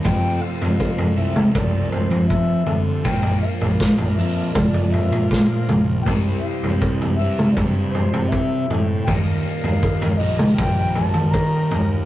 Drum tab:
SD |----------------|----o-------o---|----------------|----------------|
T2 |-------o--------|--------o-----o-|-------o--------|-------o--------|
FT |o--o-o--o-oo--o-|oo-o-o--oooo--o-|o--o-o--o-oo--o-|o--o-o--o-oo--o-|
BD |o---o---o---o---|o---o---o---o---|o---o---o---o---|o---o---o---o---|